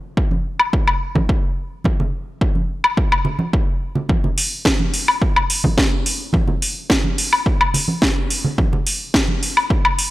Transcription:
0.17 kick loud
0.31 high conga medium
0.59 high woodblock medium
0.73 kick loud
0.88 high woodblock medium
1.15 kick medium
1.15 high conga medium
1.15 low conga medium
1.29 kick loud
1.84 kick loud
1.84 high conga medium
2.00 low conga medium
2.41 kick loud
2.55 high conga medium
2.84 high woodblock medium
2.97 kick loud
3.12 high woodblock medium
3.25 low conga medium
3.39 high conga medium
3.53 kick loud
3.95 low conga medium
4.09 kick loud
4.09 high conga medium
4.24 low conga medium
4.38 open hi-hat medium
4.65 kick loud
4.65 snare loud
4.80 high conga medium
4.94 open hi-hat medium
5.08 high woodblock medium
5.22 kick loud
5.36 high woodblock medium
5.50 open hi-hat loud
5.64 kick medium
5.64 high conga medium
5.64 low conga medium
5.78 kick loud
5.78 snare loud
6.06 open hi-hat medium
6.33 kick loud
6.33 high conga medium
6.48 low conga medium
6.62 open hi-hat medium
6.90 kick loud
6.90 snare loud
7.04 high conga medium
7.18 open hi-hat medium
7.33 high woodblock medium
7.46 kick loud
7.61 high woodblock medium
7.74 open hi-hat medium
7.74 low conga medium
7.88 high conga medium
8.02 kick loud
8.02 snare loud
8.30 open hi-hat medium
8.44 low conga medium
8.58 kick loud
8.58 high conga medium
8.73 low conga medium
8.87 open hi-hat medium
9.14 kick loud
9.14 snare loud
9.28 high conga medium
9.43 open hi-hat medium
9.57 high woodblock medium
9.70 kick loud
9.85 high woodblock medium
9.99 open hi-hat medium

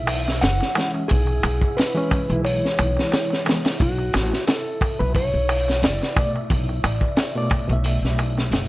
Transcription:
0.00 0.40 B1 medium
0.00 8.68 E3 medium
0.00 8.68 E4 medium
0.00 0.38 E5 loud
0.07 open hi-hat medium
0.07 darbuka tek loud
0.28 snare soft
0.28 darbuka tek soft
0.41 0.59 F#1 medium
0.41 0.91 F#5 loud
0.41 snare loud
0.41 open hi-hat medium
0.41 darbuka tek medium
0.60 snare soft
0.60 darbuka tek soft
0.75 1.06 E3 medium
0.75 1.07 G#3 medium
0.75 1.07 C#4 medium
0.75 snare medium
0.75 open hi-hat medium
0.75 darbuka tek loud
0.94 darbuka tek soft
1.08 1.41 B1 loud
1.08 1.79 G#4 loud
1.08 kick loud
1.08 open hi-hat medium
1.08 darbuka tek medium
1.27 darbuka tek soft
1.43 1.60 B1 medium
1.43 open hi-hat medium
1.43 darbuka tek medium
1.62 kick medium
1.62 darbuka tek soft
1.77 2.44 B4 loud
1.77 snare loud
1.77 open hi-hat medium
1.77 darbuka tek soft
1.95 2.25 E3 loud
1.95 2.25 G#3 medium
1.95 2.26 C#4 loud
2.11 kick loud
2.11 open hi-hat medium
2.11 darbuka tek medium
2.28 2.59 B1 loud
2.28 3.42 E3 medium
2.28 3.43 G#3 medium
2.28 closed hi-hat soft
2.28 darbuka tek soft
2.33 3.45 E4 medium
2.45 3.42 C#5 medium
2.45 open hi-hat medium
2.45 darbuka tek medium
2.65 snare soft
2.79 2.95 B1 loud
2.79 open hi-hat medium
2.79 darbuka tek medium
2.97 snare soft
2.97 darbuka tek soft
3.12 snare loud
3.12 open hi-hat medium
3.12 darbuka tek medium
3.30 snare soft
3.30 darbuka tek soft
3.45 3.66 E3 medium
3.45 3.66 G#3 medium
3.45 3.67 B3 medium
3.45 snare medium
3.45 open hi-hat medium
3.45 darbuka tek medium
3.65 snare loud
3.65 open hi-hat medium
3.65 darbuka tek soft
3.80 4.10 B1 loud
3.80 4.47 F#4 medium
3.80 kick loud
3.80 open hi-hat medium
3.80 darbuka tek soft
3.98 darbuka tek soft
4.13 4.30 A1 medium
4.13 snare soft
4.13 open hi-hat medium
4.13 darbuka tek medium
4.32 snare soft
4.32 darbuka tek soft
4.47 5.01 A4 medium
4.47 snare loud
4.47 open hi-hat medium
4.47 darbuka tek soft
4.81 kick medium
4.81 open hi-hat medium
4.81 darbuka tek medium
4.99 5.29 B1 loud
4.99 5.15 B4 medium
4.99 darbuka tek soft
5.15 5.84 C#5 loud
5.15 kick loud
5.15 open hi-hat medium
5.15 darbuka tek soft
5.34 5.79 B1 medium
5.49 open hi-hat medium
5.49 darbuka tek medium
5.68 snare soft
5.68 darbuka tek soft
5.82 5.98 F#1 medium
5.82 6.32 D5 loud
5.82 snare loud
5.82 open hi-hat medium
5.82 darbuka tek medium
6.02 snare medium
6.02 darbuka tek soft
6.16 6.46 B2 medium
6.16 6.47 A3 medium
6.16 6.47 D5 medium
6.16 kick loud
6.16 open hi-hat medium
6.16 darbuka tek medium
6.36 darbuka tek soft
6.50 6.80 B1 loud
6.50 kick loud
6.50 open hi-hat medium
6.50 darbuka tek soft
6.69 darbuka tek soft
6.84 7.00 A1 medium
6.84 open hi-hat medium
6.84 darbuka tek medium
7.01 kick medium
7.01 darbuka tek soft
7.17 snare loud
7.17 open hi-hat medium
7.17 darbuka tek medium
7.35 7.65 B2 loud
7.35 7.65 A3 medium
7.35 7.66 D5 loud
7.50 kick loud
7.50 open hi-hat medium
7.50 darbuka tek medium
7.68 7.98 B1 loud
7.68 8.68 B2 medium
7.68 8.68 A3 medium
7.68 closed hi-hat soft
7.68 darbuka tek soft
7.73 8.68 E5 medium
7.84 open hi-hat medium
7.84 darbuka tek medium
8.02 8.49 B1 medium
8.02 snare soft
8.18 open hi-hat medium
8.18 darbuka tek medium
8.38 snare medium
8.38 darbuka tek soft
8.51 8.68 F#1 medium
8.51 snare loud
8.51 open hi-hat medium
8.51 darbuka tek medium

